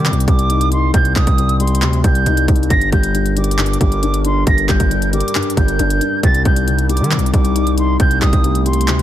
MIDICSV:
0, 0, Header, 1, 6, 480
1, 0, Start_track
1, 0, Tempo, 441176
1, 1023, Time_signature, 4, 2, 24, 8
1, 9817, End_track
2, 0, Start_track
2, 0, Title_t, "Flute"
2, 0, Program_c, 0, 73
2, 0, Note_on_c, 0, 86, 78
2, 272, Note_off_c, 0, 86, 0
2, 301, Note_on_c, 0, 86, 81
2, 753, Note_off_c, 0, 86, 0
2, 784, Note_on_c, 0, 84, 93
2, 991, Note_off_c, 0, 84, 0
2, 1023, Note_on_c, 0, 91, 112
2, 1231, Note_off_c, 0, 91, 0
2, 1258, Note_on_c, 0, 87, 91
2, 1712, Note_off_c, 0, 87, 0
2, 1736, Note_on_c, 0, 84, 78
2, 2190, Note_off_c, 0, 84, 0
2, 2224, Note_on_c, 0, 91, 93
2, 2676, Note_off_c, 0, 91, 0
2, 2942, Note_on_c, 0, 94, 111
2, 3150, Note_off_c, 0, 94, 0
2, 3180, Note_on_c, 0, 91, 89
2, 3632, Note_off_c, 0, 91, 0
2, 3667, Note_on_c, 0, 86, 78
2, 4116, Note_off_c, 0, 86, 0
2, 4141, Note_on_c, 0, 86, 85
2, 4593, Note_off_c, 0, 86, 0
2, 4624, Note_on_c, 0, 84, 91
2, 4831, Note_off_c, 0, 84, 0
2, 4865, Note_on_c, 0, 94, 105
2, 5072, Note_off_c, 0, 94, 0
2, 5102, Note_on_c, 0, 91, 78
2, 5554, Note_off_c, 0, 91, 0
2, 5582, Note_on_c, 0, 86, 82
2, 6034, Note_off_c, 0, 86, 0
2, 6065, Note_on_c, 0, 91, 86
2, 6740, Note_off_c, 0, 91, 0
2, 6786, Note_on_c, 0, 93, 111
2, 6992, Note_off_c, 0, 93, 0
2, 7023, Note_on_c, 0, 91, 86
2, 7474, Note_off_c, 0, 91, 0
2, 7500, Note_on_c, 0, 86, 82
2, 7952, Note_off_c, 0, 86, 0
2, 7982, Note_on_c, 0, 86, 81
2, 8433, Note_off_c, 0, 86, 0
2, 8465, Note_on_c, 0, 84, 95
2, 8672, Note_off_c, 0, 84, 0
2, 8702, Note_on_c, 0, 91, 113
2, 8910, Note_off_c, 0, 91, 0
2, 8940, Note_on_c, 0, 87, 91
2, 9392, Note_off_c, 0, 87, 0
2, 9416, Note_on_c, 0, 84, 78
2, 9817, Note_off_c, 0, 84, 0
2, 9817, End_track
3, 0, Start_track
3, 0, Title_t, "Ambient pad"
3, 0, Program_c, 1, 92
3, 2942, Note_on_c, 1, 55, 86
3, 2942, Note_on_c, 1, 62, 74
3, 2942, Note_on_c, 1, 70, 93
3, 6744, Note_off_c, 1, 55, 0
3, 6744, Note_off_c, 1, 62, 0
3, 6744, Note_off_c, 1, 70, 0
3, 6782, Note_on_c, 1, 55, 75
3, 6782, Note_on_c, 1, 63, 91
3, 6783, Note_on_c, 1, 48, 85
3, 8683, Note_off_c, 1, 55, 0
3, 8704, Note_on_c, 1, 57, 77
3, 9817, Note_off_c, 1, 48, 0
3, 9817, Note_off_c, 1, 57, 0
3, 9817, Note_off_c, 1, 63, 0
3, 9817, End_track
4, 0, Start_track
4, 0, Title_t, "Felt piano"
4, 0, Program_c, 2, 0
4, 0, Control_c, 2, 64, 127
4, 0, Note_on_c, 2, 48, 83
4, 0, Note_on_c, 2, 55, 88
4, 57, Note_off_c, 2, 48, 0
4, 57, Note_on_c, 2, 48, 91
4, 287, Note_off_c, 2, 55, 0
4, 303, Note_on_c, 2, 55, 84
4, 545, Note_on_c, 2, 63, 90
4, 766, Note_off_c, 2, 63, 0
4, 782, Note_on_c, 2, 63, 90
4, 1009, Note_off_c, 2, 48, 0
4, 1025, Note_on_c, 2, 48, 97
4, 1244, Note_off_c, 2, 55, 0
4, 1260, Note_on_c, 2, 55, 87
4, 1483, Note_off_c, 2, 48, 0
4, 1500, Note_on_c, 2, 48, 80
4, 1725, Note_off_c, 2, 55, 0
4, 1741, Note_on_c, 2, 55, 76
4, 1967, Note_off_c, 2, 48, 0
4, 1982, Note_off_c, 2, 63, 0
4, 1984, Note_on_c, 2, 48, 95
4, 2204, Note_off_c, 2, 55, 0
4, 2220, Note_on_c, 2, 55, 88
4, 2463, Note_on_c, 2, 63, 100
4, 2681, Note_off_c, 2, 63, 0
4, 2697, Note_on_c, 2, 63, 91
4, 2940, Note_off_c, 2, 63, 0
4, 2941, Note_off_c, 2, 55, 0
4, 2943, Note_off_c, 2, 48, 0
4, 2943, Note_on_c, 2, 43, 98
4, 2956, Control_c, 2, 64, 0
4, 3165, Control_c, 2, 64, 127
4, 3185, Note_on_c, 2, 55, 88
4, 3404, Note_off_c, 2, 43, 0
4, 3421, Note_on_c, 2, 43, 76
4, 3651, Note_off_c, 2, 55, 0
4, 3667, Note_on_c, 2, 55, 86
4, 3885, Note_off_c, 2, 43, 0
4, 3901, Note_on_c, 2, 43, 92
4, 4125, Note_off_c, 2, 55, 0
4, 4142, Note_on_c, 2, 55, 91
4, 4383, Note_on_c, 2, 62, 88
4, 4604, Note_off_c, 2, 62, 0
4, 4621, Note_on_c, 2, 62, 91
4, 4847, Note_off_c, 2, 43, 0
4, 4863, Note_on_c, 2, 43, 89
4, 5093, Note_off_c, 2, 55, 0
4, 5110, Note_on_c, 2, 55, 86
4, 5325, Note_off_c, 2, 43, 0
4, 5342, Note_on_c, 2, 43, 80
4, 5565, Note_off_c, 2, 55, 0
4, 5581, Note_on_c, 2, 55, 84
4, 5810, Note_off_c, 2, 43, 0
4, 5822, Note_off_c, 2, 62, 0
4, 5826, Note_on_c, 2, 43, 94
4, 6050, Note_off_c, 2, 55, 0
4, 6067, Note_on_c, 2, 55, 88
4, 6306, Note_on_c, 2, 62, 100
4, 6526, Note_off_c, 2, 62, 0
4, 6543, Note_on_c, 2, 62, 87
4, 6782, Note_off_c, 2, 62, 0
4, 6784, Note_off_c, 2, 43, 0
4, 6785, Note_off_c, 2, 55, 0
4, 6786, Note_on_c, 2, 48, 101
4, 6797, Control_c, 2, 64, 0
4, 6988, Control_c, 2, 64, 127
4, 7029, Note_on_c, 2, 55, 87
4, 7245, Note_off_c, 2, 48, 0
4, 7262, Note_on_c, 2, 48, 84
4, 7481, Note_off_c, 2, 55, 0
4, 7497, Note_on_c, 2, 55, 89
4, 7722, Note_off_c, 2, 48, 0
4, 7739, Note_on_c, 2, 48, 91
4, 7965, Note_off_c, 2, 55, 0
4, 7981, Note_on_c, 2, 55, 87
4, 8224, Note_on_c, 2, 63, 87
4, 8443, Note_off_c, 2, 63, 0
4, 8459, Note_on_c, 2, 63, 87
4, 8687, Note_off_c, 2, 48, 0
4, 8703, Note_on_c, 2, 48, 93
4, 8922, Note_off_c, 2, 55, 0
4, 8938, Note_on_c, 2, 55, 85
4, 9162, Note_off_c, 2, 48, 0
4, 9178, Note_on_c, 2, 48, 82
4, 9404, Note_off_c, 2, 55, 0
4, 9420, Note_on_c, 2, 55, 77
4, 9647, Note_off_c, 2, 48, 0
4, 9661, Note_off_c, 2, 63, 0
4, 9663, Note_on_c, 2, 48, 93
4, 9817, Note_off_c, 2, 48, 0
4, 9817, Note_off_c, 2, 55, 0
4, 9817, End_track
5, 0, Start_track
5, 0, Title_t, "808-style bass"
5, 0, Program_c, 3, 38
5, 0, Note_on_c, 3, 51, 101
5, 122, Note_on_c, 3, 36, 103
5, 139, Note_off_c, 3, 51, 0
5, 293, Note_off_c, 3, 36, 0
5, 302, Note_on_c, 3, 36, 106
5, 993, Note_off_c, 3, 36, 0
5, 1022, Note_on_c, 3, 36, 114
5, 1253, Note_off_c, 3, 36, 0
5, 1263, Note_on_c, 3, 36, 112
5, 1378, Note_off_c, 3, 36, 0
5, 1382, Note_on_c, 3, 36, 108
5, 1981, Note_on_c, 3, 38, 102
5, 1998, Note_off_c, 3, 36, 0
5, 2210, Note_off_c, 3, 38, 0
5, 2221, Note_on_c, 3, 36, 106
5, 2452, Note_off_c, 3, 36, 0
5, 2462, Note_on_c, 3, 36, 109
5, 2692, Note_off_c, 3, 36, 0
5, 2701, Note_on_c, 3, 36, 107
5, 2932, Note_off_c, 3, 36, 0
5, 2942, Note_on_c, 3, 31, 113
5, 3173, Note_off_c, 3, 31, 0
5, 3183, Note_on_c, 3, 31, 110
5, 4104, Note_off_c, 3, 31, 0
5, 4143, Note_on_c, 3, 31, 107
5, 4834, Note_off_c, 3, 31, 0
5, 4862, Note_on_c, 3, 31, 116
5, 5093, Note_off_c, 3, 31, 0
5, 5103, Note_on_c, 3, 31, 108
5, 5216, Note_off_c, 3, 31, 0
5, 5222, Note_on_c, 3, 31, 103
5, 5683, Note_off_c, 3, 31, 0
5, 6062, Note_on_c, 3, 31, 107
5, 6293, Note_off_c, 3, 31, 0
5, 6302, Note_on_c, 3, 31, 110
5, 6533, Note_off_c, 3, 31, 0
5, 6782, Note_on_c, 3, 36, 116
5, 7013, Note_off_c, 3, 36, 0
5, 7023, Note_on_c, 3, 36, 109
5, 7622, Note_on_c, 3, 51, 104
5, 7639, Note_off_c, 3, 36, 0
5, 7802, Note_on_c, 3, 36, 102
5, 7819, Note_off_c, 3, 51, 0
5, 7974, Note_off_c, 3, 36, 0
5, 7981, Note_on_c, 3, 36, 109
5, 8673, Note_off_c, 3, 36, 0
5, 8702, Note_on_c, 3, 36, 115
5, 8932, Note_off_c, 3, 36, 0
5, 8942, Note_on_c, 3, 36, 107
5, 9058, Note_off_c, 3, 36, 0
5, 9062, Note_on_c, 3, 36, 107
5, 9662, Note_on_c, 3, 38, 103
5, 9679, Note_off_c, 3, 36, 0
5, 9817, Note_off_c, 3, 38, 0
5, 9817, End_track
6, 0, Start_track
6, 0, Title_t, "Drums"
6, 61, Note_on_c, 9, 42, 81
6, 62, Note_on_c, 9, 39, 107
6, 142, Note_off_c, 9, 42, 0
6, 142, Note_on_c, 9, 42, 82
6, 170, Note_off_c, 9, 39, 0
6, 222, Note_off_c, 9, 42, 0
6, 222, Note_on_c, 9, 42, 81
6, 302, Note_off_c, 9, 42, 0
6, 302, Note_on_c, 9, 36, 95
6, 302, Note_on_c, 9, 42, 93
6, 411, Note_off_c, 9, 36, 0
6, 411, Note_off_c, 9, 42, 0
6, 422, Note_on_c, 9, 42, 58
6, 531, Note_off_c, 9, 42, 0
6, 542, Note_on_c, 9, 42, 81
6, 651, Note_off_c, 9, 42, 0
6, 663, Note_on_c, 9, 42, 67
6, 772, Note_off_c, 9, 42, 0
6, 780, Note_on_c, 9, 42, 75
6, 889, Note_off_c, 9, 42, 0
6, 1022, Note_on_c, 9, 36, 112
6, 1022, Note_on_c, 9, 42, 82
6, 1131, Note_off_c, 9, 36, 0
6, 1131, Note_off_c, 9, 42, 0
6, 1142, Note_on_c, 9, 42, 57
6, 1251, Note_off_c, 9, 42, 0
6, 1262, Note_on_c, 9, 42, 61
6, 1263, Note_on_c, 9, 36, 104
6, 1263, Note_on_c, 9, 39, 96
6, 1371, Note_off_c, 9, 36, 0
6, 1371, Note_off_c, 9, 42, 0
6, 1372, Note_off_c, 9, 39, 0
6, 1382, Note_on_c, 9, 36, 95
6, 1382, Note_on_c, 9, 42, 89
6, 1491, Note_off_c, 9, 36, 0
6, 1491, Note_off_c, 9, 42, 0
6, 1504, Note_on_c, 9, 42, 75
6, 1613, Note_off_c, 9, 42, 0
6, 1623, Note_on_c, 9, 42, 53
6, 1731, Note_off_c, 9, 42, 0
6, 1740, Note_on_c, 9, 46, 104
6, 1742, Note_on_c, 9, 42, 61
6, 1822, Note_off_c, 9, 42, 0
6, 1822, Note_on_c, 9, 42, 79
6, 1849, Note_off_c, 9, 46, 0
6, 1902, Note_off_c, 9, 42, 0
6, 1902, Note_on_c, 9, 42, 101
6, 1981, Note_off_c, 9, 42, 0
6, 1981, Note_on_c, 9, 42, 85
6, 1982, Note_on_c, 9, 39, 109
6, 2090, Note_off_c, 9, 39, 0
6, 2090, Note_off_c, 9, 42, 0
6, 2101, Note_on_c, 9, 42, 49
6, 2210, Note_off_c, 9, 42, 0
6, 2221, Note_on_c, 9, 36, 93
6, 2221, Note_on_c, 9, 42, 92
6, 2330, Note_off_c, 9, 36, 0
6, 2330, Note_off_c, 9, 42, 0
6, 2341, Note_on_c, 9, 42, 57
6, 2450, Note_off_c, 9, 42, 0
6, 2461, Note_on_c, 9, 42, 80
6, 2570, Note_off_c, 9, 42, 0
6, 2582, Note_on_c, 9, 42, 68
6, 2691, Note_off_c, 9, 42, 0
6, 2701, Note_on_c, 9, 36, 103
6, 2701, Note_on_c, 9, 42, 75
6, 2781, Note_off_c, 9, 42, 0
6, 2781, Note_on_c, 9, 42, 59
6, 2810, Note_off_c, 9, 36, 0
6, 2861, Note_off_c, 9, 42, 0
6, 2861, Note_on_c, 9, 42, 44
6, 2941, Note_off_c, 9, 42, 0
6, 2941, Note_on_c, 9, 42, 80
6, 2942, Note_on_c, 9, 36, 114
6, 3050, Note_off_c, 9, 42, 0
6, 3051, Note_off_c, 9, 36, 0
6, 3062, Note_on_c, 9, 42, 57
6, 3171, Note_off_c, 9, 42, 0
6, 3182, Note_on_c, 9, 36, 104
6, 3182, Note_on_c, 9, 42, 61
6, 3290, Note_off_c, 9, 42, 0
6, 3291, Note_off_c, 9, 36, 0
6, 3301, Note_on_c, 9, 42, 91
6, 3410, Note_off_c, 9, 42, 0
6, 3424, Note_on_c, 9, 42, 76
6, 3533, Note_off_c, 9, 42, 0
6, 3543, Note_on_c, 9, 42, 54
6, 3652, Note_off_c, 9, 42, 0
6, 3662, Note_on_c, 9, 42, 84
6, 3743, Note_off_c, 9, 42, 0
6, 3743, Note_on_c, 9, 42, 84
6, 3822, Note_off_c, 9, 42, 0
6, 3822, Note_on_c, 9, 42, 81
6, 3902, Note_off_c, 9, 42, 0
6, 3902, Note_on_c, 9, 39, 111
6, 3902, Note_on_c, 9, 42, 80
6, 3983, Note_off_c, 9, 42, 0
6, 3983, Note_on_c, 9, 42, 81
6, 4011, Note_off_c, 9, 39, 0
6, 4063, Note_off_c, 9, 42, 0
6, 4063, Note_on_c, 9, 42, 76
6, 4142, Note_on_c, 9, 36, 92
6, 4143, Note_off_c, 9, 42, 0
6, 4143, Note_on_c, 9, 42, 92
6, 4251, Note_off_c, 9, 36, 0
6, 4252, Note_off_c, 9, 42, 0
6, 4263, Note_on_c, 9, 42, 55
6, 4372, Note_off_c, 9, 42, 0
6, 4383, Note_on_c, 9, 42, 81
6, 4491, Note_off_c, 9, 42, 0
6, 4502, Note_on_c, 9, 42, 69
6, 4611, Note_off_c, 9, 42, 0
6, 4620, Note_on_c, 9, 42, 76
6, 4729, Note_off_c, 9, 42, 0
6, 4861, Note_on_c, 9, 42, 82
6, 4862, Note_on_c, 9, 36, 117
6, 4970, Note_off_c, 9, 42, 0
6, 4971, Note_off_c, 9, 36, 0
6, 4982, Note_on_c, 9, 42, 58
6, 5091, Note_off_c, 9, 42, 0
6, 5102, Note_on_c, 9, 42, 62
6, 5103, Note_on_c, 9, 36, 106
6, 5103, Note_on_c, 9, 39, 92
6, 5211, Note_off_c, 9, 42, 0
6, 5212, Note_off_c, 9, 36, 0
6, 5212, Note_off_c, 9, 39, 0
6, 5222, Note_on_c, 9, 36, 93
6, 5222, Note_on_c, 9, 42, 90
6, 5331, Note_off_c, 9, 36, 0
6, 5331, Note_off_c, 9, 42, 0
6, 5344, Note_on_c, 9, 42, 75
6, 5453, Note_off_c, 9, 42, 0
6, 5462, Note_on_c, 9, 42, 54
6, 5571, Note_off_c, 9, 42, 0
6, 5582, Note_on_c, 9, 42, 84
6, 5663, Note_off_c, 9, 42, 0
6, 5663, Note_on_c, 9, 42, 82
6, 5743, Note_off_c, 9, 42, 0
6, 5743, Note_on_c, 9, 42, 78
6, 5823, Note_off_c, 9, 42, 0
6, 5823, Note_on_c, 9, 39, 112
6, 5823, Note_on_c, 9, 42, 80
6, 5903, Note_off_c, 9, 42, 0
6, 5903, Note_on_c, 9, 42, 79
6, 5932, Note_off_c, 9, 39, 0
6, 5983, Note_off_c, 9, 42, 0
6, 5983, Note_on_c, 9, 42, 80
6, 6062, Note_on_c, 9, 36, 94
6, 6063, Note_off_c, 9, 42, 0
6, 6063, Note_on_c, 9, 42, 93
6, 6171, Note_off_c, 9, 36, 0
6, 6172, Note_off_c, 9, 42, 0
6, 6183, Note_on_c, 9, 42, 56
6, 6292, Note_off_c, 9, 42, 0
6, 6303, Note_on_c, 9, 42, 80
6, 6412, Note_off_c, 9, 42, 0
6, 6423, Note_on_c, 9, 42, 70
6, 6532, Note_off_c, 9, 42, 0
6, 6541, Note_on_c, 9, 42, 77
6, 6650, Note_off_c, 9, 42, 0
6, 6782, Note_on_c, 9, 36, 113
6, 6783, Note_on_c, 9, 42, 84
6, 6891, Note_off_c, 9, 36, 0
6, 6891, Note_off_c, 9, 42, 0
6, 6903, Note_on_c, 9, 42, 57
6, 7012, Note_off_c, 9, 42, 0
6, 7022, Note_on_c, 9, 42, 62
6, 7023, Note_on_c, 9, 36, 104
6, 7130, Note_off_c, 9, 42, 0
6, 7131, Note_off_c, 9, 36, 0
6, 7142, Note_on_c, 9, 42, 90
6, 7250, Note_off_c, 9, 42, 0
6, 7264, Note_on_c, 9, 42, 74
6, 7373, Note_off_c, 9, 42, 0
6, 7382, Note_on_c, 9, 42, 53
6, 7491, Note_off_c, 9, 42, 0
6, 7502, Note_on_c, 9, 42, 85
6, 7581, Note_off_c, 9, 42, 0
6, 7581, Note_on_c, 9, 42, 80
6, 7661, Note_off_c, 9, 42, 0
6, 7661, Note_on_c, 9, 42, 82
6, 7741, Note_off_c, 9, 42, 0
6, 7741, Note_on_c, 9, 39, 108
6, 7741, Note_on_c, 9, 42, 78
6, 7822, Note_off_c, 9, 42, 0
6, 7822, Note_on_c, 9, 42, 82
6, 7850, Note_off_c, 9, 39, 0
6, 7902, Note_off_c, 9, 42, 0
6, 7902, Note_on_c, 9, 42, 77
6, 7981, Note_on_c, 9, 36, 95
6, 7982, Note_off_c, 9, 42, 0
6, 7982, Note_on_c, 9, 42, 95
6, 8090, Note_off_c, 9, 36, 0
6, 8091, Note_off_c, 9, 42, 0
6, 8102, Note_on_c, 9, 42, 58
6, 8210, Note_off_c, 9, 42, 0
6, 8222, Note_on_c, 9, 42, 83
6, 8331, Note_off_c, 9, 42, 0
6, 8343, Note_on_c, 9, 42, 69
6, 8451, Note_off_c, 9, 42, 0
6, 8460, Note_on_c, 9, 42, 76
6, 8569, Note_off_c, 9, 42, 0
6, 8701, Note_on_c, 9, 42, 81
6, 8702, Note_on_c, 9, 36, 110
6, 8810, Note_off_c, 9, 42, 0
6, 8811, Note_off_c, 9, 36, 0
6, 8822, Note_on_c, 9, 42, 59
6, 8931, Note_off_c, 9, 42, 0
6, 8942, Note_on_c, 9, 36, 103
6, 8942, Note_on_c, 9, 42, 60
6, 8943, Note_on_c, 9, 39, 94
6, 9051, Note_off_c, 9, 36, 0
6, 9051, Note_off_c, 9, 42, 0
6, 9052, Note_off_c, 9, 39, 0
6, 9062, Note_on_c, 9, 36, 95
6, 9062, Note_on_c, 9, 42, 88
6, 9171, Note_off_c, 9, 36, 0
6, 9171, Note_off_c, 9, 42, 0
6, 9184, Note_on_c, 9, 42, 76
6, 9293, Note_off_c, 9, 42, 0
6, 9303, Note_on_c, 9, 42, 54
6, 9412, Note_off_c, 9, 42, 0
6, 9420, Note_on_c, 9, 46, 109
6, 9423, Note_on_c, 9, 42, 60
6, 9503, Note_off_c, 9, 42, 0
6, 9503, Note_on_c, 9, 42, 83
6, 9529, Note_off_c, 9, 46, 0
6, 9583, Note_off_c, 9, 42, 0
6, 9583, Note_on_c, 9, 42, 95
6, 9662, Note_off_c, 9, 42, 0
6, 9662, Note_on_c, 9, 42, 84
6, 9663, Note_on_c, 9, 39, 109
6, 9771, Note_off_c, 9, 42, 0
6, 9772, Note_off_c, 9, 39, 0
6, 9783, Note_on_c, 9, 42, 48
6, 9817, Note_off_c, 9, 42, 0
6, 9817, End_track
0, 0, End_of_file